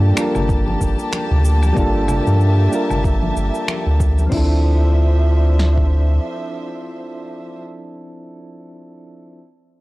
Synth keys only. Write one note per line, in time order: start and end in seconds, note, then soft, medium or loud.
0.00 0.12 G3 medium
0.00 0.13 A#3 medium
0.00 0.13 D4 medium
0.00 0.14 F4 medium
0.00 0.15 A4 loud
0.13 1.71 G3 medium
0.13 1.72 A#3 medium
0.13 1.73 D4 medium
0.19 1.74 F4 medium
0.19 1.75 A#4 medium
1.73 2.67 G3 medium
1.73 2.68 A#3 medium
1.73 2.69 D4 medium
1.78 2.70 F4 medium
1.78 2.70 A4 loud
2.68 4.26 G3 medium
2.68 4.27 A#3 medium
2.68 4.28 D4 medium
2.73 4.29 F4 medium
2.73 4.30 A#4 medium
4.27 7.55 F3 medium
4.27 7.58 C4 medium
4.32 7.60 D4 medium
4.32 7.63 E4 medium
4.37 7.65 A4 medium